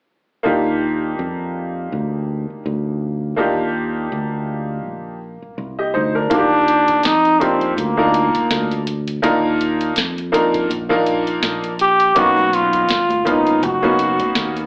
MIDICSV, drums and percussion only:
0, 0, Header, 1, 2, 480
1, 0, Start_track
1, 0, Key_signature, -3, "major"
1, 0, Tempo, 731707
1, 297, Time_signature, 4, 2, 24, 8
1, 9619, End_track
2, 0, Start_track
2, 0, Title_t, "Drums"
2, 4138, Note_on_c, 9, 36, 101
2, 4138, Note_on_c, 9, 42, 73
2, 4204, Note_off_c, 9, 36, 0
2, 4204, Note_off_c, 9, 42, 0
2, 4383, Note_on_c, 9, 42, 60
2, 4448, Note_off_c, 9, 42, 0
2, 4514, Note_on_c, 9, 42, 48
2, 4517, Note_on_c, 9, 36, 84
2, 4579, Note_off_c, 9, 42, 0
2, 4583, Note_off_c, 9, 36, 0
2, 4614, Note_on_c, 9, 42, 74
2, 4626, Note_on_c, 9, 38, 98
2, 4680, Note_off_c, 9, 42, 0
2, 4692, Note_off_c, 9, 38, 0
2, 4758, Note_on_c, 9, 42, 31
2, 4823, Note_off_c, 9, 42, 0
2, 4856, Note_on_c, 9, 36, 91
2, 4863, Note_on_c, 9, 42, 71
2, 4922, Note_off_c, 9, 36, 0
2, 4929, Note_off_c, 9, 42, 0
2, 4994, Note_on_c, 9, 42, 45
2, 5060, Note_off_c, 9, 42, 0
2, 5096, Note_on_c, 9, 36, 77
2, 5104, Note_on_c, 9, 42, 81
2, 5162, Note_off_c, 9, 36, 0
2, 5169, Note_off_c, 9, 42, 0
2, 5341, Note_on_c, 9, 42, 56
2, 5406, Note_off_c, 9, 42, 0
2, 5473, Note_on_c, 9, 36, 75
2, 5476, Note_on_c, 9, 42, 57
2, 5539, Note_off_c, 9, 36, 0
2, 5542, Note_off_c, 9, 42, 0
2, 5580, Note_on_c, 9, 38, 101
2, 5582, Note_on_c, 9, 42, 69
2, 5646, Note_off_c, 9, 38, 0
2, 5648, Note_off_c, 9, 42, 0
2, 5717, Note_on_c, 9, 42, 34
2, 5782, Note_off_c, 9, 42, 0
2, 5819, Note_on_c, 9, 42, 65
2, 5884, Note_off_c, 9, 42, 0
2, 5953, Note_on_c, 9, 42, 50
2, 6019, Note_off_c, 9, 42, 0
2, 6058, Note_on_c, 9, 36, 99
2, 6059, Note_on_c, 9, 42, 78
2, 6124, Note_off_c, 9, 36, 0
2, 6125, Note_off_c, 9, 42, 0
2, 6303, Note_on_c, 9, 42, 63
2, 6368, Note_off_c, 9, 42, 0
2, 6434, Note_on_c, 9, 42, 45
2, 6499, Note_off_c, 9, 42, 0
2, 6534, Note_on_c, 9, 42, 75
2, 6546, Note_on_c, 9, 38, 98
2, 6600, Note_off_c, 9, 42, 0
2, 6611, Note_off_c, 9, 38, 0
2, 6679, Note_on_c, 9, 42, 33
2, 6745, Note_off_c, 9, 42, 0
2, 6785, Note_on_c, 9, 42, 72
2, 6851, Note_off_c, 9, 42, 0
2, 6916, Note_on_c, 9, 42, 49
2, 6917, Note_on_c, 9, 36, 92
2, 6982, Note_off_c, 9, 36, 0
2, 6982, Note_off_c, 9, 42, 0
2, 7024, Note_on_c, 9, 42, 74
2, 7090, Note_off_c, 9, 42, 0
2, 7151, Note_on_c, 9, 36, 86
2, 7217, Note_off_c, 9, 36, 0
2, 7258, Note_on_c, 9, 42, 59
2, 7324, Note_off_c, 9, 42, 0
2, 7394, Note_on_c, 9, 42, 57
2, 7460, Note_off_c, 9, 42, 0
2, 7496, Note_on_c, 9, 38, 112
2, 7498, Note_on_c, 9, 42, 73
2, 7562, Note_off_c, 9, 38, 0
2, 7564, Note_off_c, 9, 42, 0
2, 7634, Note_on_c, 9, 42, 33
2, 7700, Note_off_c, 9, 42, 0
2, 7736, Note_on_c, 9, 42, 66
2, 7802, Note_off_c, 9, 42, 0
2, 7871, Note_on_c, 9, 42, 48
2, 7937, Note_off_c, 9, 42, 0
2, 7975, Note_on_c, 9, 82, 59
2, 7976, Note_on_c, 9, 42, 72
2, 7977, Note_on_c, 9, 36, 99
2, 8040, Note_off_c, 9, 82, 0
2, 8041, Note_off_c, 9, 42, 0
2, 8042, Note_off_c, 9, 36, 0
2, 8114, Note_on_c, 9, 63, 46
2, 8114, Note_on_c, 9, 82, 42
2, 8180, Note_off_c, 9, 63, 0
2, 8180, Note_off_c, 9, 82, 0
2, 8216, Note_on_c, 9, 82, 47
2, 8222, Note_on_c, 9, 42, 60
2, 8281, Note_off_c, 9, 82, 0
2, 8287, Note_off_c, 9, 42, 0
2, 8352, Note_on_c, 9, 42, 49
2, 8356, Note_on_c, 9, 36, 81
2, 8356, Note_on_c, 9, 82, 41
2, 8418, Note_off_c, 9, 42, 0
2, 8421, Note_off_c, 9, 36, 0
2, 8422, Note_off_c, 9, 82, 0
2, 8453, Note_on_c, 9, 42, 72
2, 8456, Note_on_c, 9, 82, 59
2, 8465, Note_on_c, 9, 38, 93
2, 8519, Note_off_c, 9, 42, 0
2, 8522, Note_off_c, 9, 82, 0
2, 8531, Note_off_c, 9, 38, 0
2, 8593, Note_on_c, 9, 63, 63
2, 8593, Note_on_c, 9, 82, 42
2, 8597, Note_on_c, 9, 42, 30
2, 8658, Note_off_c, 9, 63, 0
2, 8658, Note_off_c, 9, 82, 0
2, 8663, Note_off_c, 9, 42, 0
2, 8693, Note_on_c, 9, 64, 65
2, 8693, Note_on_c, 9, 82, 45
2, 8695, Note_on_c, 9, 36, 91
2, 8703, Note_on_c, 9, 42, 73
2, 8759, Note_off_c, 9, 64, 0
2, 8759, Note_off_c, 9, 82, 0
2, 8761, Note_off_c, 9, 36, 0
2, 8769, Note_off_c, 9, 42, 0
2, 8833, Note_on_c, 9, 82, 48
2, 8834, Note_on_c, 9, 42, 43
2, 8899, Note_off_c, 9, 42, 0
2, 8899, Note_off_c, 9, 82, 0
2, 8934, Note_on_c, 9, 36, 83
2, 8937, Note_on_c, 9, 63, 44
2, 8937, Note_on_c, 9, 82, 60
2, 8940, Note_on_c, 9, 42, 78
2, 9000, Note_off_c, 9, 36, 0
2, 9002, Note_off_c, 9, 63, 0
2, 9002, Note_off_c, 9, 82, 0
2, 9006, Note_off_c, 9, 42, 0
2, 9072, Note_on_c, 9, 63, 55
2, 9072, Note_on_c, 9, 82, 41
2, 9138, Note_off_c, 9, 63, 0
2, 9138, Note_off_c, 9, 82, 0
2, 9176, Note_on_c, 9, 82, 41
2, 9178, Note_on_c, 9, 42, 62
2, 9242, Note_off_c, 9, 82, 0
2, 9243, Note_off_c, 9, 42, 0
2, 9312, Note_on_c, 9, 36, 77
2, 9313, Note_on_c, 9, 42, 59
2, 9315, Note_on_c, 9, 63, 56
2, 9315, Note_on_c, 9, 82, 41
2, 9377, Note_off_c, 9, 36, 0
2, 9379, Note_off_c, 9, 42, 0
2, 9381, Note_off_c, 9, 63, 0
2, 9381, Note_off_c, 9, 82, 0
2, 9416, Note_on_c, 9, 38, 106
2, 9417, Note_on_c, 9, 82, 53
2, 9418, Note_on_c, 9, 42, 70
2, 9481, Note_off_c, 9, 38, 0
2, 9483, Note_off_c, 9, 82, 0
2, 9484, Note_off_c, 9, 42, 0
2, 9555, Note_on_c, 9, 42, 32
2, 9555, Note_on_c, 9, 82, 40
2, 9619, Note_off_c, 9, 42, 0
2, 9619, Note_off_c, 9, 82, 0
2, 9619, End_track
0, 0, End_of_file